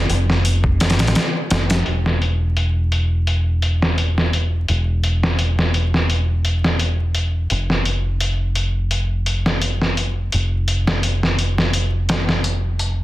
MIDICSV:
0, 0, Header, 1, 3, 480
1, 0, Start_track
1, 0, Tempo, 705882
1, 1263, Time_signature, 4, 2, 24, 8
1, 8866, End_track
2, 0, Start_track
2, 0, Title_t, "Fingered electric bass"
2, 0, Program_c, 0, 33
2, 66, Note_on_c, 0, 29, 81
2, 677, Note_off_c, 0, 29, 0
2, 677, Note_on_c, 0, 33, 91
2, 772, Note_off_c, 0, 33, 0
2, 1030, Note_on_c, 0, 29, 83
2, 1240, Note_off_c, 0, 29, 0
2, 1272, Note_on_c, 0, 28, 67
2, 3165, Note_off_c, 0, 28, 0
2, 3189, Note_on_c, 0, 28, 71
2, 5084, Note_off_c, 0, 28, 0
2, 5108, Note_on_c, 0, 29, 75
2, 7004, Note_off_c, 0, 29, 0
2, 7029, Note_on_c, 0, 29, 73
2, 8866, Note_off_c, 0, 29, 0
2, 8866, End_track
3, 0, Start_track
3, 0, Title_t, "Drums"
3, 65, Note_on_c, 9, 42, 68
3, 133, Note_off_c, 9, 42, 0
3, 202, Note_on_c, 9, 38, 46
3, 270, Note_off_c, 9, 38, 0
3, 305, Note_on_c, 9, 42, 82
3, 373, Note_off_c, 9, 42, 0
3, 433, Note_on_c, 9, 36, 99
3, 501, Note_off_c, 9, 36, 0
3, 545, Note_on_c, 9, 42, 64
3, 551, Note_on_c, 9, 38, 82
3, 610, Note_off_c, 9, 42, 0
3, 610, Note_on_c, 9, 42, 65
3, 615, Note_off_c, 9, 38, 0
3, 615, Note_on_c, 9, 38, 81
3, 674, Note_off_c, 9, 42, 0
3, 674, Note_on_c, 9, 42, 67
3, 680, Note_off_c, 9, 38, 0
3, 680, Note_on_c, 9, 38, 86
3, 730, Note_off_c, 9, 42, 0
3, 730, Note_on_c, 9, 42, 64
3, 735, Note_off_c, 9, 38, 0
3, 735, Note_on_c, 9, 38, 85
3, 784, Note_off_c, 9, 42, 0
3, 784, Note_on_c, 9, 42, 79
3, 789, Note_off_c, 9, 38, 0
3, 789, Note_on_c, 9, 38, 107
3, 852, Note_off_c, 9, 42, 0
3, 857, Note_off_c, 9, 38, 0
3, 1024, Note_on_c, 9, 42, 72
3, 1029, Note_on_c, 9, 38, 106
3, 1092, Note_off_c, 9, 42, 0
3, 1097, Note_off_c, 9, 38, 0
3, 1155, Note_on_c, 9, 42, 80
3, 1161, Note_on_c, 9, 38, 101
3, 1223, Note_off_c, 9, 42, 0
3, 1229, Note_off_c, 9, 38, 0
3, 1264, Note_on_c, 9, 42, 73
3, 1332, Note_off_c, 9, 42, 0
3, 1401, Note_on_c, 9, 38, 34
3, 1469, Note_off_c, 9, 38, 0
3, 1507, Note_on_c, 9, 42, 58
3, 1575, Note_off_c, 9, 42, 0
3, 1745, Note_on_c, 9, 42, 76
3, 1813, Note_off_c, 9, 42, 0
3, 1985, Note_on_c, 9, 42, 61
3, 2053, Note_off_c, 9, 42, 0
3, 2225, Note_on_c, 9, 42, 69
3, 2293, Note_off_c, 9, 42, 0
3, 2464, Note_on_c, 9, 42, 57
3, 2532, Note_off_c, 9, 42, 0
3, 2601, Note_on_c, 9, 38, 45
3, 2669, Note_off_c, 9, 38, 0
3, 2706, Note_on_c, 9, 42, 67
3, 2774, Note_off_c, 9, 42, 0
3, 2841, Note_on_c, 9, 38, 30
3, 2909, Note_off_c, 9, 38, 0
3, 2947, Note_on_c, 9, 42, 55
3, 3015, Note_off_c, 9, 42, 0
3, 3185, Note_on_c, 9, 42, 71
3, 3253, Note_off_c, 9, 42, 0
3, 3424, Note_on_c, 9, 42, 60
3, 3492, Note_off_c, 9, 42, 0
3, 3560, Note_on_c, 9, 38, 51
3, 3628, Note_off_c, 9, 38, 0
3, 3664, Note_on_c, 9, 42, 79
3, 3732, Note_off_c, 9, 42, 0
3, 3800, Note_on_c, 9, 38, 39
3, 3868, Note_off_c, 9, 38, 0
3, 3904, Note_on_c, 9, 42, 59
3, 3972, Note_off_c, 9, 42, 0
3, 4041, Note_on_c, 9, 38, 40
3, 4109, Note_off_c, 9, 38, 0
3, 4145, Note_on_c, 9, 42, 72
3, 4213, Note_off_c, 9, 42, 0
3, 4383, Note_on_c, 9, 42, 56
3, 4451, Note_off_c, 9, 42, 0
3, 4518, Note_on_c, 9, 38, 47
3, 4586, Note_off_c, 9, 38, 0
3, 4620, Note_on_c, 9, 42, 73
3, 4688, Note_off_c, 9, 42, 0
3, 4859, Note_on_c, 9, 42, 57
3, 4927, Note_off_c, 9, 42, 0
3, 5100, Note_on_c, 9, 42, 73
3, 5168, Note_off_c, 9, 42, 0
3, 5235, Note_on_c, 9, 38, 33
3, 5303, Note_off_c, 9, 38, 0
3, 5341, Note_on_c, 9, 42, 61
3, 5409, Note_off_c, 9, 42, 0
3, 5579, Note_on_c, 9, 42, 79
3, 5647, Note_off_c, 9, 42, 0
3, 5817, Note_on_c, 9, 42, 64
3, 5885, Note_off_c, 9, 42, 0
3, 6058, Note_on_c, 9, 42, 76
3, 6126, Note_off_c, 9, 42, 0
3, 6299, Note_on_c, 9, 42, 58
3, 6367, Note_off_c, 9, 42, 0
3, 6433, Note_on_c, 9, 38, 46
3, 6501, Note_off_c, 9, 38, 0
3, 6538, Note_on_c, 9, 42, 72
3, 6606, Note_off_c, 9, 42, 0
3, 6674, Note_on_c, 9, 38, 33
3, 6742, Note_off_c, 9, 38, 0
3, 6781, Note_on_c, 9, 42, 60
3, 6849, Note_off_c, 9, 42, 0
3, 7020, Note_on_c, 9, 42, 74
3, 7088, Note_off_c, 9, 42, 0
3, 7261, Note_on_c, 9, 42, 63
3, 7329, Note_off_c, 9, 42, 0
3, 7395, Note_on_c, 9, 38, 51
3, 7463, Note_off_c, 9, 38, 0
3, 7502, Note_on_c, 9, 42, 82
3, 7570, Note_off_c, 9, 42, 0
3, 7639, Note_on_c, 9, 38, 42
3, 7707, Note_off_c, 9, 38, 0
3, 7742, Note_on_c, 9, 42, 60
3, 7810, Note_off_c, 9, 42, 0
3, 7877, Note_on_c, 9, 38, 42
3, 7945, Note_off_c, 9, 38, 0
3, 7979, Note_on_c, 9, 42, 74
3, 8047, Note_off_c, 9, 42, 0
3, 8220, Note_on_c, 9, 42, 67
3, 8225, Note_on_c, 9, 38, 97
3, 8288, Note_off_c, 9, 42, 0
3, 8293, Note_off_c, 9, 38, 0
3, 8356, Note_on_c, 9, 38, 46
3, 8424, Note_off_c, 9, 38, 0
3, 8460, Note_on_c, 9, 42, 70
3, 8528, Note_off_c, 9, 42, 0
3, 8700, Note_on_c, 9, 42, 60
3, 8768, Note_off_c, 9, 42, 0
3, 8866, End_track
0, 0, End_of_file